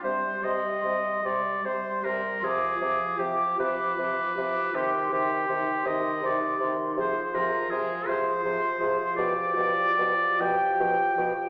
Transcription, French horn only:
X:1
M:6/8
L:1/8
Q:3/8=53
K:Cm
V:1 name="French horn" clef=bass
G, G, G, G, G, G, | F, F, F, F, F, F, | E, E, E, E, E, E, | F, F, F, F, F, F, |
F, F, F, F, F, F, |]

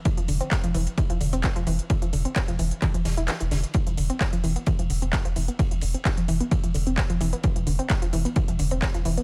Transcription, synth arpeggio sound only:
X:1
M:4/4
L:1/16
Q:1/4=130
K:C
V:1 name="Synth arpeggio sound" clef=bass
E, F, D, C z F, E, z E, F, D, C z F, E, z | E, F, D, C z F, E, z E, F, E, E E, E, D, z | E, F, D, C z F, E, B, E, F, D, C z F, E, B, | E, F, D, C z F, E, B, E, F, D, C z F, E, B, |
E, F, D, C z F, E, B, E, F, D, C z F, E, B, |]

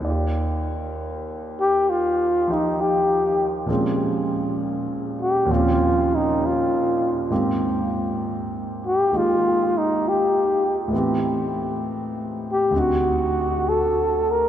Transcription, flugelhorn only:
X:1
M:4/4
L:1/16
Q:"Swing" 1/4=66
K:Eb
V:1 name="Flugelhorn"
z6 G2 F2 E2 G3 z | z6 G2 F2 E2 F3 z | z6 G2 F2 E2 G3 z | z6 G2 ^F4 =A2 B2 |]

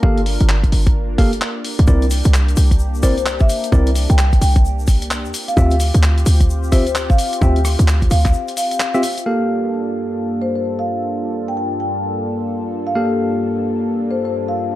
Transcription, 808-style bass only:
X:1
M:4/4
L:1/16
Q:"Swing 16ths" 1/4=130
K:Gm
V:1 name="808-style bass" clef=bass
G,,,3 G,,,3 G,,,6 z3 C,, | C,,3 C,,3 C,,6- C,, =E,, z2 | C,,3 C,,3 C,,6- C,, =E,, z2 | D,,3 D,,3 D,,6- D,, F,, z2 |
D,,3 D,,3 D,,2 z8 | z16 | z16 | z16 |]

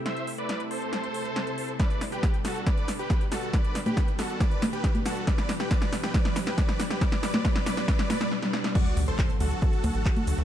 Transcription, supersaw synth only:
X:1
M:4/4
L:1/16
Q:1/4=138
K:G
V:1 name="Supersaw synth"
[ce]2 z [Bd]2 z [Ac]8- [Ac] z | [Bd]2 z [GB]2 z [FA]2 [Bd]2 z [GB]2 z [FA]2 | [Bd]2 z [GB]2 z [FA]2 [Bd]2 z [GB]2 z [FA]2 | [Bd]2 z [GB] [Bd]2 z [GB] [Bd]2 z [GB] [Bd]2 z [GB] |
[Bd]2 [Bd]2 [Bd]2 [Bd]2 [Bd]2 [Bd]2 z4 | [Fd]2 z [Ac]2 z [FA]8- [FA] z |]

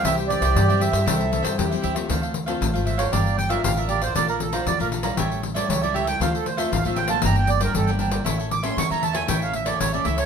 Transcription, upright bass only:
X:1
M:4/4
L:1/16
Q:1/4=117
K:Cmix
V:1 name="Upright bass" clef=bass
C,,3 C,, G,,3 G,, C,,3 G,, E,,2 D,,2 | [K:Dm] D,,4 A,,, ^G,,,3 =G,,,4 A,,,4 | B,,,4 F,, B,,,3 A,,,4 ^C,,4 | D,,4 A,,, A,,,3 G,,,4 G,,,4 |
A,,,4 E,, E,,3 A,,,4 A,,,2 ^C,,2 |]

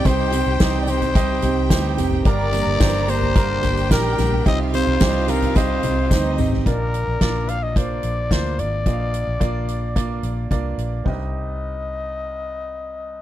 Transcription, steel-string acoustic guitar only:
X:1
M:4/4
L:1/8
Q:1/4=109
K:Cm
V:1 name="Steel-string acoustic guitar"
[C,G,CEG] [CEG] [G,CEG] [CEG] [C,G,CEG] [CEG] [G,CEG] [CEG] | [G,,D,G,B,DG] [G,B,DG] [G,B,DG] [G,B,DG] [G,,D,G,B,DG] [G,B,DG] [G,B,DG] [G,B,DG] | [C,G,CEG] [CEG] [G,CEG] [CEG] [C,G,CEG] [CEG] [G,CEG] [CEG] | z8 |
z8 | z8 |]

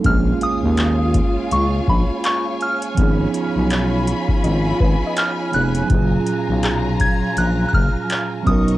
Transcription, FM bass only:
X:1
M:4/4
L:1/16
Q:"Swing 16ths" 1/4=82
K:Bbphr
V:1 name="FM bass" clef=bass
B,,,2 z E,,4 z D,,2 B,,, z4 z | A,,,2 z C,,4 z A,,,2 A,,, z3 F,,,2 | G,,,2 z C,,4 z B,,,2 G,,, z3 =B,,,2 |]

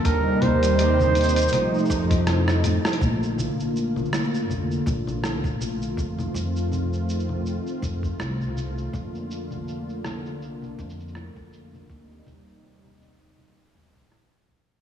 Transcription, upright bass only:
X:1
M:4/4
L:1/16
Q:"Swing 16ths" 1/4=81
K:Bb
V:1 name="Upright bass" clef=bass
E,, z E,,6 z2 F,,4- F,, z | B,,,8 F,,, z B,,,3 B,,,3 | F,, z F,,6- F,, z F,, z C,,4 | F,,8 C,, z F,,3 F,,3 |
E,, z E,,6- E,, z E,, z B,,,4 |]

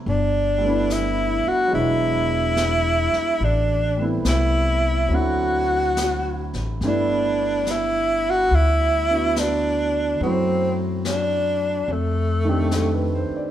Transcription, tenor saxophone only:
X:1
M:4/4
L:1/8
Q:"Swing" 1/4=71
K:G
V:1 name="Tenor saxophone"
D2 E F E4 | D z E2 F3 z | D2 E F E2 D2 | C z D2 A,3 z |]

